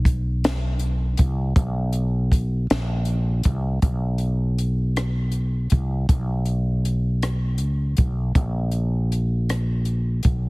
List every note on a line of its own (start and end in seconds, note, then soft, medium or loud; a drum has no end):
0.00 1.15 B1 loud
0.05 kick medium
0.05 closed hi-hat medium
0.44 snare loud
0.44 closed hi-hat medium
0.79 closed hi-hat medium
1.17 1.53 C2 medium
1.17 kick medium
1.17 closed hi-hat medium
1.56 2.66 B1 loud
1.56 kick loud
1.56 closed hi-hat medium
1.93 closed hi-hat medium
2.32 kick medium
2.32 closed hi-hat medium
2.70 3.41 A#1 loud
2.70 snare loud
2.70 closed hi-hat medium
3.05 closed hi-hat medium
3.43 3.79 C2 medium
3.43 kick medium
3.43 closed hi-hat medium
3.82 5.67 B1 medium
3.82 kick loud
3.82 closed hi-hat medium
4.18 closed hi-hat soft
4.58 closed hi-hat medium
4.96 cross-stick medium
4.96 closed hi-hat medium
5.32 closed hi-hat soft
5.70 6.06 C2 medium
5.70 kick medium
5.70 closed hi-hat medium
6.09 7.61 B1 medium
6.09 kick loud
6.09 closed hi-hat medium
6.46 closed hi-hat soft
6.85 closed hi-hat medium
7.22 cross-stick medium
7.22 closed hi-hat medium
7.58 7.94 C#2 medium
7.58 closed hi-hat soft
7.97 8.32 B1 medium
7.97 kick medium
7.97 closed hi-hat medium
8.35 10.20 A#1 loud
8.35 kick loud
8.35 closed hi-hat medium
8.72 closed hi-hat soft
9.12 closed hi-hat medium
9.49 cross-stick medium
9.49 closed hi-hat medium
9.85 closed hi-hat soft
10.23 10.49 B1 medium
10.23 kick medium
10.23 closed hi-hat medium